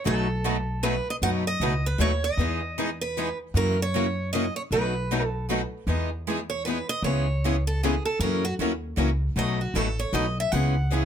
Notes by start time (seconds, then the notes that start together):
0.04 B1 B2 F#3 A3 D#4 F#4 A4 B4
0.45 B2 F#3 A3 D#4 F#4 B4
0.83 B2 F#3 A3 D#4 F#4 B4
1.10 D#5
1.22 F#2 B2 F#3 A3 D#4 F#4 B4 F#5
1.47 D#5
1.60 C#2 B2 F#3 A3 D#4 F#4 B4
1.86 B4
1.99 D#2 B2 F#3 A3 D#4 F#4 B4 C#5
2.24 D#5
2.37 E2 E3 G#3 B3 D#4 G#4
2.78 E3 G#3 B3 D#4 G#4
3.01 B4
3.18 E3 G#3 B3 D#4 G#4
3.54 F#2 C#3 E3 F#3 A#3 C#4 E4 F#4 A#4
3.82 C#5
3.94 C#3 E3 F#3 A#3 C#4 E4 F#4 A#4
4.33 C#3 E3 F#3 A#3 C#4 E4 F#4 A#4 D#5
4.56 C#5
4.71 B1 B2 F#3 A3 D#4 F#4 B4
5.11 B2 F#3 A3 D#4 F#4 B4
5.26 A4
5.49 B2 F#3 A3 D#4 F#4 B4
5.87 E2 E3 G#3 B3 D#4 G#4
6.27 E3 G#3 B3 D#4 G#4
6.50 C#5
6.65 E3 G#3 B3 D#4 G#4 B4
6.89 D#5
7.02 C#2 C#3 E3 G#3 B3 C#4 E4 G#4 C#5
7.44 C#3 E3 G#3 B3 C#4 E4 G#4
7.67 A4
7.83 C#3 E3 G#3 B3 C#4 E4 G#4
8.05 A4
8.19 F#2 C#3 E3 F#3 A#3 C#4 E4 F#4 A#4
8.45 F#4
8.59 D#2 C#3 E3 F#3 A#3 C#4 E4 F#4 A#4
8.96 C#2 C#3 E3 F#3 A#3 C#4 E4 F#4 A#4
9.36 B1 B2 F#3 A3 D#4 F#4 B4 D#5
9.61 F#4
9.74 A1 B2 F#3 A3 D#4 F#4 A4 B4
9.99 C#5
10.13 B1 B2 F#3 A3 D#4 F#4 B4 D#5
10.40 E5
10.52 C#2 C#3 E3 G#3 B3 C#4 E4 G#4 F#5
10.91 C#3 E3 G#3 B3 C#4 E4 G#4